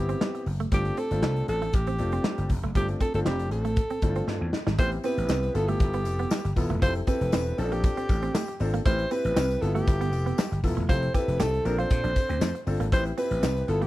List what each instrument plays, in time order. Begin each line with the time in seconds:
Already playing: slap bass G1, grand piano B3 C4 E4 G4, alto saxophone G4
0.09 clean electric guitar C4, closed hi-hat
0.21 clean electric guitar G3, snare, clap
0.35 muted clean electric guitar stroke, closed hi-hat
0.46 slap bass F#1, open hi-hat
0.60 clean electric guitar A3, closed hi-hat
0.72 slap bass G1, clean electric guitar G3, grand piano A3 C4 D4 F4, alto saxophone G4, kick, closed hi-hat
0.85 muted clean electric guitar stroke, closed hi-hat
0.97 clean electric guitar C4, alto saxophone A4, closed hi-hat
1.11 slap bass G1, grand piano A3 C4 D4 F4, closed hi-hat
1.23 slap bass C2, clean electric guitar C4, snare, clap
1.36 closed hi-hat
1.48 slap bass A1, alto saxophone A4, muted clean electric guitar stroke, closed hi-hat
1.62 clean electric guitar A3, closed hi-hat
1.73 slap bass A1, alto saxophone G4, kick, closed hi-hat
1.87 clean electric guitar C4, closed hi-hat
1.98 slap bass F1, grand piano A3 C4 D4 F4, muted clean electric guitar stroke, closed hi-hat
2.12 clean electric guitar C4, closed hi-hat
2.24 clean electric guitar G3, snare, clap
2.38 slap bass G1, muted clean electric guitar stroke, closed hi-hat
2.49 slap bass F1, kick, open hi-hat
2.63 slap bass F#1, clean electric guitar A3, closed hi-hat
2.75 slap bass G1, clean electric guitar G3, grand piano A3 C4 D4 F4, alto saxophone G4, kick, closed hi-hat
2.88 muted clean electric guitar stroke, closed hi-hat
3.00 clean electric guitar C4, alto saxophone A4, kick, closed hi-hat
3.14 slap bass G1, grand piano A3 C4 D4 F4, alto saxophone A4, closed hi-hat
3.26 slap bass F1, clean electric guitar C4, alto saxophone G4, snare, clap
3.39 closed hi-hat
3.51 slap bass A1, alto saxophone A4, muted clean electric guitar stroke, closed hi-hat
3.65 clean electric guitar A3, closed hi-hat
3.76 kick, closed hi-hat
3.90 clean electric guitar C4, closed hi-hat
4.02 slap bass G1, grand piano A3 C4 D4 E4, muted clean electric guitar stroke, kick, closed hi-hat
4.09 grand piano F4
4.16 clean electric guitar C4, closed hi-hat
4.27 slap bass G2, clean electric guitar A3, snare
4.41 slap bass E2, muted clean electric guitar stroke
4.53 snare
4.67 slap bass G#1, clean electric guitar G3, snare
4.78 slap bass A1, clean electric guitar A3, grand piano B3 C4 E4 G4, alto saxophone C5, kick, closed hi-hat, tambourine
4.92 muted clean electric guitar stroke, closed hi-hat
5.04 grand piano B3 C4 E4 G4, clean electric guitar C4, alto saxophone B4, closed hi-hat, tambourine
5.18 slap bass A1, closed hi-hat
5.29 slap bass C2, clean electric guitar C4, snare, clap, tambourine
5.43 closed hi-hat
5.54 slap bass G1, grand piano B3 E4 F4 A4, alto saxophone A4, muted clean electric guitar stroke, closed hi-hat, tambourine
5.68 clean electric guitar A3, alto saxophone G4, closed hi-hat
5.80 slap bass G1, kick, closed hi-hat
5.93 clean electric guitar B3, closed hi-hat
6.05 slap bass F1, muted clean electric guitar stroke, closed hi-hat, tambourine
6.19 clean electric guitar B3, closed hi-hat
6.31 clean electric guitar G3, snare, clap, tambourine
6.45 slap bass G1, muted clean electric guitar stroke, closed hi-hat
6.56 slap bass D#1, grand piano B3 E4 F4 A4, kick, open hi-hat, tambourine
6.70 slap bass E1, clean electric guitar A3, closed hi-hat
6.81 slap bass F1, grand piano C4 E4 G4 A4, clean electric guitar F4, alto saxophone C5, kick, closed hi-hat, tambourine
6.95 muted clean electric guitar stroke, closed hi-hat
7.07 grand piano C4 E4 G4 A4, clean electric guitar C4, alto saxophone B4, kick, closed hi-hat, tambourine
7.21 slap bass F1, closed hi-hat
7.32 slap bass E1, clean electric guitar C4, snare, clap, tambourine
7.46 closed hi-hat
7.58 slap bass A#1, grand piano C4 C#4 F4 A4, alto saxophone A4, muted clean electric guitar stroke, closed hi-hat, tambourine
7.64 grand piano D4
7.72 clean electric guitar A#3, alto saxophone G4, closed hi-hat
7.84 kick, closed hi-hat, tambourine
7.97 clean electric guitar C4, closed hi-hat
8.09 slap bass A1, muted clean electric guitar stroke, kick, closed hi-hat, tambourine
8.22 clean electric guitar C4, closed hi-hat
8.35 clean electric guitar A3, snare, clap, tambourine
8.48 muted clean electric guitar stroke, closed hi-hat
8.60 slap bass G#1, grand piano C4 D4 F4 A4, open hi-hat, tambourine
8.74 clean electric guitar A#3, closed hi-hat
8.85 slap bass A1, clean electric guitar A3, grand piano C4 E4 G4 B4, alto saxophone C5, kick, closed hi-hat, tambourine
8.99 muted clean electric guitar stroke, closed hi-hat
9.11 clean electric guitar C4, grand piano C4 E4 G4 B4, alto saxophone B4, closed hi-hat, tambourine
9.25 slap bass A1, closed hi-hat
9.36 slap bass C2, clean electric guitar C4, snare, clap, tambourine
9.50 closed hi-hat
9.62 slap bass G1, grand piano B3 E4 F4 A4, alto saxophone A4, muted clean electric guitar stroke, closed hi-hat, tambourine
9.75 clean electric guitar A3, alto saxophone G4, closed hi-hat
9.87 slap bass G1, kick, closed hi-hat, tambourine
10.01 clean electric guitar B3, closed hi-hat
10.12 slap bass F1, muted clean electric guitar stroke, closed hi-hat, tambourine
10.26 clean electric guitar B3, closed hi-hat
10.38 clean electric guitar G3, snare, clap, tambourine
10.52 slap bass G1, muted clean electric guitar stroke, closed hi-hat
10.63 slap bass D#1, grand piano B3 E4 F4 A4, kick, open hi-hat, tambourine
10.77 slap bass E1, clean electric guitar A3, closed hi-hat
10.89 slap bass F1, grand piano C4 E4 G4 A4, clean electric guitar F4, alto saxophone C5, kick, closed hi-hat, tambourine
11.02 muted clean electric guitar stroke, closed hi-hat
11.14 grand piano C4 E4 G4 A4, clean electric guitar G4, alto saxophone B4, kick, closed hi-hat, tambourine
11.28 slap bass F1, closed hi-hat
11.40 slap bass C2, clean electric guitar G4, alto saxophone A4, snare, clap, tambourine
11.54 closed hi-hat
11.65 slap bass A#1, grand piano C4 D4 F4 A4, alto saxophone A#4, muted clean electric guitar stroke, closed hi-hat, tambourine
11.78 clean electric guitar F4, alto saxophone C5, closed hi-hat
11.90 slap bass A#2, kick, closed hi-hat, tambourine
12.04 slap bass A#1, clean electric guitar D4, closed hi-hat
12.16 muted clean electric guitar stroke, kick, closed hi-hat, tambourine
12.29 slap bass D2, clean electric guitar C4, closed hi-hat
12.41 slap bass F2, clean electric guitar A3, snare, clap, tambourine
12.55 muted clean electric guitar stroke, closed hi-hat
12.67 slap bass G1, grand piano C4 D4 F4 A4, open hi-hat, tambourine
12.80 slap bass G#1, clean electric guitar A#3, closed hi-hat
12.92 slap bass A1, clean electric guitar A3, grand piano C4 E4 G4 B4, alto saxophone C5, kick, closed hi-hat, tambourine
13.06 muted clean electric guitar stroke, closed hi-hat
13.18 clean electric guitar C4, grand piano C4 E4 G4 B4, alto saxophone B4, closed hi-hat, tambourine
13.31 slap bass A1, closed hi-hat
13.43 slap bass C2, clean electric guitar C4, snare, clap, tambourine
13.56 closed hi-hat
13.68 slap bass G1, grand piano B3 E4 F4 A4, alto saxophone A4, muted clean electric guitar stroke, closed hi-hat
13.82 clean electric guitar A3, alto saxophone G4, closed hi-hat